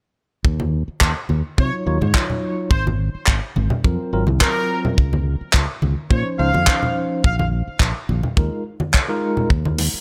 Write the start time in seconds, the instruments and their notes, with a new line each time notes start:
0.45 fingered electric bass D#2, kick
0.60 high conga
0.88 muted fingered electric bass stroke
1.01 fingered electric bass D#2, kick, clap
1.29 fingered electric bass D#2, high conga
1.58 fingered electric bass C3, tine electric piano F#3 D#4 F4 C#5, trumpet section C#5, kick
1.86 fingered electric bass D#2, tine electric piano F#3 D#4 F4 C#5
2.01 fingered electric bass G#2, high conga
2.14 tine electric piano F#3 D#4 F4 C#5, kick, clap
2.30 low conga
2.71 fingered electric bass G#1, trumpet section C5, kick
2.87 high conga
3.15 muted fingered electric bass stroke
3.26 fingered electric bass G#1, kick, clap
3.56 fingered electric bass G#1, high conga
3.70 low conga
3.84 fingered electric bass F2, tine electric piano F#3 C4 F4 A#4, kick
4.13 fingered electric bass G#1, tine electric piano F#3 C4 F4 A#4
4.27 fingered electric bass C2, high conga
4.41 tine electric piano F#3 C4 F4 A#4, trumpet section A#4, kick, clap
4.85 low conga
4.98 fingered electric bass C#2, kick
5.13 high conga
5.41 muted fingered electric bass stroke
5.53 fingered electric bass C#2, kick, clap
5.82 fingered electric bass C#2, high conga
6.10 fingered electric bass A#2, tine electric piano F3 C#4 D#4 C5, trumpet section C#5, kick
6.38 fingered electric bass C#2, tine electric piano F3 C#4 D#4 C5, trumpet section F5
6.53 fingered electric bass F2, high conga
6.67 tine electric piano F3 C#4 D#4 C5, kick, clap
6.83 low conga
7.24 fingered electric bass A#1, trumpet section F5, kick
7.38 trumpet section F5, high conga
7.67 muted fingered electric bass stroke
7.80 fingered electric bass A#1, kick, clap
8.09 fingered electric bass A#1, high conga
8.23 low conga
8.37 fingered electric bass D#2, tine electric piano G#3 D#4 F4 A#4, kick
8.80 high conga
8.94 kick, clap
9.08 tine electric piano G#3 D#4 F4 A#4
9.37 low conga
9.50 fingered electric bass D#2, kick
9.65 high conga
9.78 open hi-hat, high bongo
9.94 muted fingered electric bass stroke